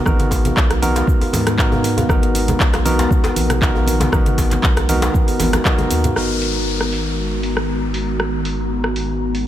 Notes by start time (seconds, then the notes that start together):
Already playing: D#3 G#3 B3 F#4 A#4
0.06 G#1 B3 D#4 F#4 A#4, kick, cross-stick, high conga, low conga, cabasa
0.19 closed hi-hat, mid tom, djembe tone
0.31 kick, open hi-hat, djembe slap, muted conga, cabasa
0.45 closed hi-hat, high conga, djembe tone, low conga, cabasa
0.57 B1, kick, clap, cabasa
0.70 cross-stick, closed hi-hat, muted conga, djembe tone
0.82 B3 D#4 F#4 A#4, open hi-hat, high conga, cabasa
0.96 closed hi-hat, djembe slap, djembe tone, cabasa
1.07 kick, muted conga, high conga, cabasa
1.21 open hi-hat, djembe tone
1.33 G#2, open hi-hat, djembe slap, high conga, cabasa
1.46 cross-stick, closed hi-hat, muted conga, djembe slap, djembe tone, cabasa
1.58 B3 D#4 F#4 A#4, kick, clap, cabasa
1.72 mid tom, djembe tone
1.83 open hi-hat, muted conga, cabasa
1.97 closed hi-hat, djembe tone, low conga, cabasa
2.09 G#1 B3 D#4 F#4 A#4, kick, cross-stick, high conga, low conga, cabasa
2.22 closed hi-hat, djembe tone
2.35 open hi-hat, muted conga, cabasa
2.48 closed hi-hat, high conga, djembe tone, low conga, cabasa
2.60 B1, kick, clap, cabasa
2.73 cross-stick, clap, closed hi-hat, muted conga, djembe tone
2.85 B3 D#4 F#4 A#4, open hi-hat, high conga, cabasa
2.99 closed hi-hat, djembe slap, djembe tone, cabasa
3.10 kick, muted conga, high conga, cabasa
3.24 closed hi-hat, djembe slap, djembe tone
3.36 A#1, open hi-hat, high conga, cabasa
3.49 cross-stick, closed hi-hat, muted conga, djembe tone, low conga, cabasa
3.61 B3 D#4 F#4 A#4, kick, clap, mid tom, cabasa
3.75 djembe tone
3.86 open hi-hat, muted conga, high conga, cabasa
4.00 closed hi-hat, mid tom, djembe slap, djembe tone, cabasa
4.12 G#1 B3 D#4 F#4 A#4, kick, cross-stick, high conga, low conga, cabasa
4.26 closed hi-hat, mid tom, djembe tone, cabasa
4.38 kick, open hi-hat, djembe slap, muted conga, cabasa
4.51 clap, closed hi-hat, high conga, djembe tone, low conga, cabasa
4.63 B1, kick, clap, cabasa
4.77 cross-stick, closed hi-hat, muted conga, djembe tone
4.89 B3 D#4 F#4 A#4, open hi-hat, high conga, cabasa
5.02 closed hi-hat, djembe slap, djembe tone, cabasa
5.14 kick, muted conga, high conga, cabasa
5.28 open hi-hat, djembe tone, cabasa
5.39 G#1, open hi-hat, djembe slap, high conga, cabasa
5.53 cross-stick, closed hi-hat, djembe slap, muted conga, djembe tone, cabasa
5.65 B3 D#4 F#4 A#4, kick, clap, high tom, cabasa
5.78 closed hi-hat, mid tom, high tom, djembe tone
5.90 D#2, open hi-hat, muted conga, cabasa
6.04 closed hi-hat, mid tom, djembe tone, low conga, cabasa
6.16 G#1 D#3 G#3 B3 D#4 F#4 A#4 A#5, cross-stick, downlifter
6.42 open hi-hat
6.81 cross-stick
6.93 open hi-hat
7.43 open hi-hat
7.57 cross-stick
7.94 open hi-hat
8.20 cross-stick
8.45 open hi-hat
8.84 cross-stick
8.96 open hi-hat
9.35 open hi-hat